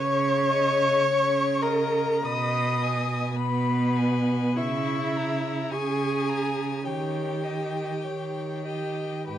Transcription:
0.00 0.90 C#3 medium
0.00 0.51 C#5 medium
0.00 1.63 C#5 loud
0.00 1.64 C#6 medium
0.50 1.05 D#5 soft
1.04 2.10 C#3 medium
1.04 1.63 C#5 soft
1.61 2.25 A#4 medium
1.61 2.23 D#5 soft
1.61 2.26 A#5 medium
2.24 3.22 B2 medium
2.24 3.34 D#5 medium
2.24 2.84 B5 medium
2.24 3.36 D#6 medium
2.83 3.38 G#5 soft
3.34 4.42 B2 medium
3.34 4.58 B3 medium
3.34 4.59 B4 medium
3.34 3.98 B5 soft
3.96 4.57 G#5 soft
4.56 5.59 C#3 medium
4.56 5.73 E4 medium
4.56 5.72 E5 medium
4.56 5.18 C#6 soft
5.16 5.74 A#5 soft
5.71 6.71 C#3 medium
5.71 6.85 G#4 medium
5.71 6.87 G#5 medium
5.71 6.30 C#6 soft
6.29 6.84 A#5 soft
6.83 7.88 D#3 medium
6.83 8.64 G4 medium
6.83 7.44 C#5 soft
6.83 8.65 G5 soft
7.43 8.05 D#5 soft
8.04 9.14 D#3 soft
8.04 8.67 C#5 soft
8.65 9.27 G4 medium
8.65 9.27 D#5 soft
8.65 9.28 G5 soft
9.28 9.38 G#2 soft
9.28 9.38 G4 medium
9.28 9.38 B4 soft
9.28 9.38 G5 medium

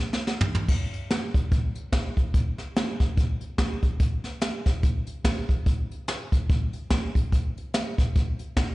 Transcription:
0.13 snare medium
0.27 snare medium
0.41 floor tom medium
0.55 floor tom medium
0.68 kick loud
0.68 crash loud
0.93 closed hi-hat medium
1.10 snare loud
1.10 closed hi-hat medium
1.34 kick loud
1.34 closed hi-hat medium
1.52 kick loud
1.52 closed hi-hat medium
1.75 closed hi-hat medium
1.93 kick medium
1.93 snare loud
1.93 closed hi-hat medium
2.17 kick medium
2.17 closed hi-hat medium
2.34 kick loud
2.34 closed hi-hat medium
2.58 snare soft
2.58 closed hi-hat medium
2.76 snare loud
2.76 closed hi-hat medium
3.00 kick loud
3.00 snare soft
3.00 closed hi-hat medium
3.17 kick loud
3.17 closed hi-hat medium
3.41 closed hi-hat medium
3.58 kick medium
3.58 snare loud
3.58 closed hi-hat medium
3.83 kick medium
3.83 closed hi-hat medium
4.00 kick loud
4.00 closed hi-hat loud
4.24 snare soft
4.24 closed hi-hat medium
4.41 snare loud
4.41 closed hi-hat loud
4.66 kick medium
4.66 snare soft
4.66 closed hi-hat medium
4.83 kick loud
4.83 closed hi-hat medium
5.07 closed hi-hat medium
5.24 kick medium
5.24 snare loud
5.24 closed hi-hat medium
5.49 kick medium
5.49 closed hi-hat medium
5.66 kick loud
5.66 closed hi-hat loud
5.91 closed hi-hat medium
6.08 snare loud
6.08 closed hi-hat medium
6.32 kick loud
6.32 closed hi-hat medium
6.50 kick loud
6.50 closed hi-hat medium
6.73 closed hi-hat medium
6.90 kick medium
6.90 snare loud
6.90 closed hi-hat medium
7.15 kick medium
7.15 closed hi-hat medium
7.32 kick loud
7.32 closed hi-hat loud
7.58 closed hi-hat medium
7.74 snare loud
7.74 closed hi-hat medium
7.98 kick loud
7.98 snare soft
7.98 closed hi-hat medium
8.15 kick loud
8.15 closed hi-hat medium
8.39 closed hi-hat medium
8.57 kick medium
8.57 snare loud
8.57 closed hi-hat medium

